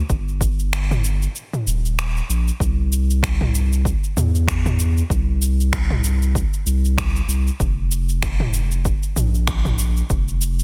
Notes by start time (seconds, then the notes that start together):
0.10 G1, kick, shaker
0.28 shaker
0.41 kick, shaker
0.59 shaker
0.73 finger snap, shaker
0.91 mid tom, shaker
1.04 shaker
1.22 shaker
1.36 shaker
1.53 mid tom, shaker
1.67 D#1, shaker
1.85 shaker
1.99 finger snap, shaker
2.17 shaker
2.29 A#1, shaker
2.48 shaker
2.60 C2, kick, shaker
2.93 shaker
3.10 shaker
3.23 finger snap, kick, shaker
3.41 mid tom
3.55 shaker
3.73 shaker
3.85 kick, shaker
4.04 shaker
4.17 E2, mid tom, shaker
4.35 shaker
4.48 finger snap, kick, shaker
4.66 mid tom, shaker
4.79 shaker
4.97 shaker
5.10 C2, kick, shaker
5.42 shaker
5.60 shaker
5.73 finger snap, kick, shaker
5.90 mid tom
6.04 shaker
6.22 shaker
6.35 kick, shaker
6.54 shaker
6.66 C2, shaker
6.85 shaker
6.98 finger snap, kick, shaker
7.16 shaker
7.28 C2, shaker
7.47 shaker
7.60 F1, kick, shaker
7.92 shaker
8.09 shaker
8.23 finger snap, kick, shaker
8.40 mid tom
8.54 shaker
8.71 shaker
8.85 kick, shaker
9.03 shaker
9.16 A#1, mid tom, shaker
9.34 shaker
9.47 finger snap, kick, shaker
9.65 mid tom, shaker
9.79 shaker
9.97 shaker
10.10 F1, kick, shaker
10.28 shaker
10.42 shaker
10.59 shaker